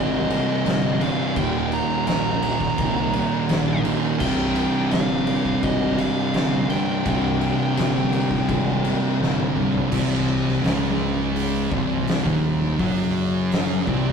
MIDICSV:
0, 0, Header, 1, 6, 480
1, 0, Start_track
1, 0, Key_signature, -3, "minor"
1, 0, Tempo, 711744
1, 921, Time_signature, 4, 2, 24, 8
1, 4763, Tempo, 716846
1, 9491, End_track
2, 0, Start_track
2, 0, Title_t, "Lead electric guitar"
2, 0, Program_c, 0, 29
2, 0, Note_on_c, 0, 75, 87
2, 690, Note_on_c, 0, 77, 102
2, 704, Note_off_c, 0, 75, 0
2, 909, Note_off_c, 0, 77, 0
2, 924, Note_on_c, 0, 79, 111
2, 1169, Note_off_c, 0, 79, 0
2, 1169, Note_on_c, 0, 82, 121
2, 1393, Note_off_c, 0, 82, 0
2, 1401, Note_on_c, 0, 82, 93
2, 2573, Note_off_c, 0, 82, 0
2, 2832, Note_on_c, 0, 79, 107
2, 3316, Note_off_c, 0, 79, 0
2, 3319, Note_on_c, 0, 77, 99
2, 3799, Note_on_c, 0, 75, 95
2, 3815, Note_off_c, 0, 77, 0
2, 4039, Note_on_c, 0, 77, 113
2, 4048, Note_off_c, 0, 75, 0
2, 4515, Note_off_c, 0, 77, 0
2, 4517, Note_on_c, 0, 79, 101
2, 6171, Note_off_c, 0, 79, 0
2, 9491, End_track
3, 0, Start_track
3, 0, Title_t, "Distorted electric guitar"
3, 0, Program_c, 1, 30
3, 0, Note_on_c, 1, 36, 89
3, 0, Note_on_c, 1, 43, 84
3, 0, Note_on_c, 1, 48, 110
3, 186, Note_off_c, 1, 36, 0
3, 191, Note_off_c, 1, 43, 0
3, 193, Note_off_c, 1, 48, 0
3, 200, Note_on_c, 1, 48, 77
3, 209, Note_on_c, 1, 43, 72
3, 217, Note_on_c, 1, 36, 70
3, 426, Note_off_c, 1, 48, 0
3, 431, Note_off_c, 1, 43, 0
3, 433, Note_off_c, 1, 36, 0
3, 442, Note_on_c, 1, 36, 74
3, 451, Note_on_c, 1, 43, 89
3, 457, Note_on_c, 1, 48, 88
3, 906, Note_off_c, 1, 36, 0
3, 911, Note_off_c, 1, 43, 0
3, 914, Note_off_c, 1, 48, 0
3, 922, Note_on_c, 1, 39, 95
3, 930, Note_on_c, 1, 46, 100
3, 938, Note_on_c, 1, 51, 105
3, 2106, Note_off_c, 1, 39, 0
3, 2107, Note_off_c, 1, 51, 0
3, 2110, Note_off_c, 1, 46, 0
3, 2115, Note_on_c, 1, 51, 91
3, 2124, Note_on_c, 1, 46, 75
3, 2130, Note_on_c, 1, 39, 70
3, 2343, Note_off_c, 1, 51, 0
3, 2348, Note_off_c, 1, 46, 0
3, 2349, Note_off_c, 1, 39, 0
3, 2357, Note_on_c, 1, 39, 78
3, 2366, Note_on_c, 1, 46, 89
3, 2374, Note_on_c, 1, 51, 82
3, 2824, Note_off_c, 1, 39, 0
3, 2829, Note_off_c, 1, 46, 0
3, 2832, Note_off_c, 1, 51, 0
3, 2837, Note_on_c, 1, 36, 89
3, 2845, Note_on_c, 1, 43, 99
3, 2855, Note_on_c, 1, 48, 117
3, 4030, Note_off_c, 1, 43, 0
3, 4033, Note_off_c, 1, 48, 0
3, 4036, Note_on_c, 1, 48, 96
3, 4047, Note_on_c, 1, 43, 73
3, 4053, Note_off_c, 1, 36, 0
3, 4056, Note_on_c, 1, 36, 66
3, 4270, Note_off_c, 1, 43, 0
3, 4278, Note_off_c, 1, 36, 0
3, 4281, Note_on_c, 1, 36, 74
3, 4289, Note_on_c, 1, 43, 95
3, 4295, Note_off_c, 1, 48, 0
3, 4298, Note_on_c, 1, 48, 81
3, 4753, Note_off_c, 1, 43, 0
3, 4759, Note_off_c, 1, 36, 0
3, 4762, Note_on_c, 1, 36, 94
3, 4769, Note_on_c, 1, 43, 99
3, 4776, Note_off_c, 1, 48, 0
3, 4779, Note_on_c, 1, 48, 115
3, 5945, Note_off_c, 1, 36, 0
3, 5947, Note_off_c, 1, 48, 0
3, 5949, Note_off_c, 1, 43, 0
3, 5955, Note_on_c, 1, 48, 84
3, 5964, Note_on_c, 1, 43, 78
3, 5973, Note_on_c, 1, 36, 64
3, 6183, Note_off_c, 1, 48, 0
3, 6188, Note_off_c, 1, 36, 0
3, 6188, Note_off_c, 1, 43, 0
3, 6196, Note_on_c, 1, 36, 80
3, 6208, Note_on_c, 1, 43, 85
3, 6215, Note_on_c, 1, 48, 79
3, 6663, Note_off_c, 1, 36, 0
3, 6669, Note_off_c, 1, 43, 0
3, 6673, Note_off_c, 1, 48, 0
3, 6674, Note_on_c, 1, 36, 102
3, 6680, Note_on_c, 1, 48, 105
3, 7150, Note_off_c, 1, 36, 0
3, 7153, Note_off_c, 1, 48, 0
3, 7154, Note_on_c, 1, 37, 98
3, 7159, Note_on_c, 1, 49, 119
3, 7871, Note_off_c, 1, 37, 0
3, 7873, Note_off_c, 1, 49, 0
3, 7878, Note_on_c, 1, 36, 98
3, 7882, Note_on_c, 1, 48, 90
3, 8233, Note_off_c, 1, 36, 0
3, 8235, Note_off_c, 1, 48, 0
3, 8240, Note_on_c, 1, 39, 95
3, 8244, Note_on_c, 1, 51, 111
3, 8594, Note_off_c, 1, 39, 0
3, 8596, Note_off_c, 1, 51, 0
3, 8605, Note_on_c, 1, 42, 111
3, 8609, Note_on_c, 1, 54, 116
3, 9317, Note_off_c, 1, 42, 0
3, 9319, Note_on_c, 1, 36, 102
3, 9320, Note_off_c, 1, 54, 0
3, 9323, Note_on_c, 1, 48, 108
3, 9491, Note_off_c, 1, 36, 0
3, 9491, Note_off_c, 1, 48, 0
3, 9491, End_track
4, 0, Start_track
4, 0, Title_t, "Distorted electric guitar"
4, 0, Program_c, 2, 30
4, 675, Note_on_c, 2, 48, 93
4, 687, Note_on_c, 2, 43, 78
4, 699, Note_on_c, 2, 36, 70
4, 904, Note_off_c, 2, 48, 0
4, 909, Note_off_c, 2, 36, 0
4, 909, Note_off_c, 2, 43, 0
4, 2586, Note_on_c, 2, 51, 92
4, 2599, Note_on_c, 2, 46, 77
4, 2609, Note_on_c, 2, 39, 74
4, 2818, Note_off_c, 2, 51, 0
4, 2823, Note_off_c, 2, 39, 0
4, 2825, Note_off_c, 2, 46, 0
4, 4516, Note_on_c, 2, 48, 92
4, 4527, Note_on_c, 2, 43, 81
4, 4538, Note_on_c, 2, 36, 78
4, 4748, Note_off_c, 2, 36, 0
4, 4751, Note_off_c, 2, 43, 0
4, 4769, Note_off_c, 2, 48, 0
4, 6430, Note_on_c, 2, 48, 90
4, 6441, Note_on_c, 2, 43, 76
4, 6451, Note_on_c, 2, 36, 83
4, 6660, Note_off_c, 2, 48, 0
4, 6665, Note_off_c, 2, 36, 0
4, 6666, Note_off_c, 2, 43, 0
4, 9491, End_track
5, 0, Start_track
5, 0, Title_t, "Fingered electric bass"
5, 0, Program_c, 3, 33
5, 0, Note_on_c, 3, 32, 93
5, 253, Note_off_c, 3, 32, 0
5, 437, Note_on_c, 3, 31, 106
5, 728, Note_off_c, 3, 31, 0
5, 920, Note_on_c, 3, 27, 104
5, 1210, Note_off_c, 3, 27, 0
5, 1398, Note_on_c, 3, 34, 93
5, 1689, Note_off_c, 3, 34, 0
5, 1876, Note_on_c, 3, 36, 101
5, 2167, Note_off_c, 3, 36, 0
5, 2361, Note_on_c, 3, 34, 91
5, 2651, Note_off_c, 3, 34, 0
5, 2834, Note_on_c, 3, 24, 92
5, 3126, Note_off_c, 3, 24, 0
5, 3315, Note_on_c, 3, 31, 97
5, 3607, Note_off_c, 3, 31, 0
5, 3796, Note_on_c, 3, 32, 93
5, 4088, Note_off_c, 3, 32, 0
5, 4276, Note_on_c, 3, 31, 91
5, 4569, Note_off_c, 3, 31, 0
5, 4759, Note_on_c, 3, 24, 88
5, 5050, Note_off_c, 3, 24, 0
5, 5237, Note_on_c, 3, 31, 96
5, 5528, Note_off_c, 3, 31, 0
5, 5718, Note_on_c, 3, 32, 99
5, 6008, Note_off_c, 3, 32, 0
5, 6198, Note_on_c, 3, 31, 91
5, 6489, Note_off_c, 3, 31, 0
5, 6674, Note_on_c, 3, 24, 90
5, 7130, Note_off_c, 3, 24, 0
5, 7157, Note_on_c, 3, 25, 100
5, 7853, Note_off_c, 3, 25, 0
5, 7878, Note_on_c, 3, 24, 99
5, 8215, Note_off_c, 3, 24, 0
5, 8238, Note_on_c, 3, 27, 100
5, 8575, Note_off_c, 3, 27, 0
5, 8602, Note_on_c, 3, 30, 96
5, 9297, Note_off_c, 3, 30, 0
5, 9324, Note_on_c, 3, 24, 96
5, 9491, Note_off_c, 3, 24, 0
5, 9491, End_track
6, 0, Start_track
6, 0, Title_t, "Drums"
6, 205, Note_on_c, 9, 51, 74
6, 272, Note_off_c, 9, 51, 0
6, 445, Note_on_c, 9, 51, 98
6, 459, Note_on_c, 9, 38, 103
6, 512, Note_off_c, 9, 51, 0
6, 527, Note_off_c, 9, 38, 0
6, 681, Note_on_c, 9, 51, 84
6, 749, Note_off_c, 9, 51, 0
6, 918, Note_on_c, 9, 51, 109
6, 920, Note_on_c, 9, 36, 123
6, 985, Note_off_c, 9, 51, 0
6, 987, Note_off_c, 9, 36, 0
6, 1158, Note_on_c, 9, 51, 71
6, 1225, Note_off_c, 9, 51, 0
6, 1395, Note_on_c, 9, 51, 114
6, 1409, Note_on_c, 9, 38, 113
6, 1462, Note_off_c, 9, 51, 0
6, 1477, Note_off_c, 9, 38, 0
6, 1635, Note_on_c, 9, 51, 90
6, 1702, Note_off_c, 9, 51, 0
6, 1757, Note_on_c, 9, 36, 97
6, 1771, Note_on_c, 9, 38, 31
6, 1825, Note_off_c, 9, 36, 0
6, 1838, Note_off_c, 9, 38, 0
6, 1875, Note_on_c, 9, 51, 112
6, 1876, Note_on_c, 9, 36, 125
6, 1942, Note_off_c, 9, 51, 0
6, 1944, Note_off_c, 9, 36, 0
6, 2114, Note_on_c, 9, 51, 82
6, 2181, Note_off_c, 9, 51, 0
6, 2354, Note_on_c, 9, 51, 113
6, 2369, Note_on_c, 9, 38, 109
6, 2421, Note_off_c, 9, 51, 0
6, 2436, Note_off_c, 9, 38, 0
6, 2595, Note_on_c, 9, 51, 92
6, 2662, Note_off_c, 9, 51, 0
6, 2833, Note_on_c, 9, 49, 113
6, 2835, Note_on_c, 9, 36, 120
6, 2900, Note_off_c, 9, 49, 0
6, 2902, Note_off_c, 9, 36, 0
6, 3072, Note_on_c, 9, 51, 76
6, 3140, Note_off_c, 9, 51, 0
6, 3313, Note_on_c, 9, 51, 103
6, 3328, Note_on_c, 9, 38, 121
6, 3380, Note_off_c, 9, 51, 0
6, 3395, Note_off_c, 9, 38, 0
6, 3553, Note_on_c, 9, 51, 76
6, 3620, Note_off_c, 9, 51, 0
6, 3677, Note_on_c, 9, 36, 86
6, 3744, Note_off_c, 9, 36, 0
6, 3796, Note_on_c, 9, 51, 110
6, 3797, Note_on_c, 9, 36, 127
6, 3864, Note_off_c, 9, 51, 0
6, 3865, Note_off_c, 9, 36, 0
6, 4035, Note_on_c, 9, 51, 81
6, 4103, Note_off_c, 9, 51, 0
6, 4275, Note_on_c, 9, 51, 92
6, 4290, Note_on_c, 9, 38, 107
6, 4342, Note_off_c, 9, 51, 0
6, 4357, Note_off_c, 9, 38, 0
6, 4516, Note_on_c, 9, 51, 82
6, 4584, Note_off_c, 9, 51, 0
6, 4758, Note_on_c, 9, 51, 109
6, 4760, Note_on_c, 9, 36, 120
6, 4825, Note_off_c, 9, 51, 0
6, 4827, Note_off_c, 9, 36, 0
6, 4997, Note_on_c, 9, 51, 71
6, 5064, Note_off_c, 9, 51, 0
6, 5238, Note_on_c, 9, 51, 116
6, 5253, Note_on_c, 9, 38, 116
6, 5305, Note_off_c, 9, 51, 0
6, 5320, Note_off_c, 9, 38, 0
6, 5476, Note_on_c, 9, 51, 85
6, 5543, Note_off_c, 9, 51, 0
6, 5597, Note_on_c, 9, 36, 87
6, 5611, Note_on_c, 9, 38, 32
6, 5664, Note_off_c, 9, 36, 0
6, 5678, Note_off_c, 9, 38, 0
6, 5717, Note_on_c, 9, 36, 127
6, 5719, Note_on_c, 9, 51, 112
6, 5784, Note_off_c, 9, 36, 0
6, 5786, Note_off_c, 9, 51, 0
6, 5956, Note_on_c, 9, 51, 83
6, 6023, Note_off_c, 9, 51, 0
6, 6213, Note_on_c, 9, 38, 70
6, 6280, Note_off_c, 9, 38, 0
6, 6317, Note_on_c, 9, 48, 83
6, 6384, Note_off_c, 9, 48, 0
6, 6439, Note_on_c, 9, 45, 91
6, 6506, Note_off_c, 9, 45, 0
6, 6556, Note_on_c, 9, 43, 98
6, 6623, Note_off_c, 9, 43, 0
6, 6676, Note_on_c, 9, 36, 123
6, 6676, Note_on_c, 9, 57, 124
6, 6743, Note_off_c, 9, 36, 0
6, 6743, Note_off_c, 9, 57, 0
6, 7051, Note_on_c, 9, 38, 33
6, 7118, Note_off_c, 9, 38, 0
6, 7158, Note_on_c, 9, 46, 59
6, 7173, Note_on_c, 9, 38, 115
6, 7225, Note_off_c, 9, 46, 0
6, 7240, Note_off_c, 9, 38, 0
6, 7639, Note_on_c, 9, 46, 62
6, 7706, Note_off_c, 9, 46, 0
6, 7878, Note_on_c, 9, 36, 112
6, 7945, Note_off_c, 9, 36, 0
6, 8119, Note_on_c, 9, 46, 62
6, 8134, Note_on_c, 9, 38, 108
6, 8186, Note_off_c, 9, 46, 0
6, 8201, Note_off_c, 9, 38, 0
6, 8240, Note_on_c, 9, 36, 119
6, 8258, Note_on_c, 9, 38, 39
6, 8307, Note_off_c, 9, 36, 0
6, 8324, Note_off_c, 9, 38, 0
6, 8601, Note_on_c, 9, 36, 111
6, 8601, Note_on_c, 9, 46, 72
6, 8668, Note_off_c, 9, 36, 0
6, 8668, Note_off_c, 9, 46, 0
6, 9083, Note_on_c, 9, 46, 68
6, 9098, Note_on_c, 9, 38, 115
6, 9150, Note_off_c, 9, 46, 0
6, 9165, Note_off_c, 9, 38, 0
6, 9323, Note_on_c, 9, 36, 102
6, 9390, Note_off_c, 9, 36, 0
6, 9491, End_track
0, 0, End_of_file